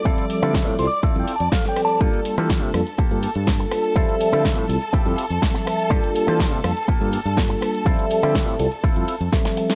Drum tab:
RD |----------------|x-x-x-x-x-x-x-x-|x-x-x-x-x-x-x-x-|x-x-x-x-x-x-x-x-|
HH |xxoxxxoxxxoxxxox|xxoxxxoxxxoxxxox|xxoxxxoxxxoxxxox|xxoxxxoxxxoxxxox|
SD |---ro-------oor-|---ro-r-----o-r-|---ro-------oor-|---ro-r-----o-r-|
BD |o---o---o---o---|o---o---o---o---|o---o---o---o---|o---o---o---o---|

RD |x-x-x-x-x-x-x-x-|
HH |xxoxxxoxxxoxxxox|
SD |---ro-------oo-o|
BD |o---o---o---o---|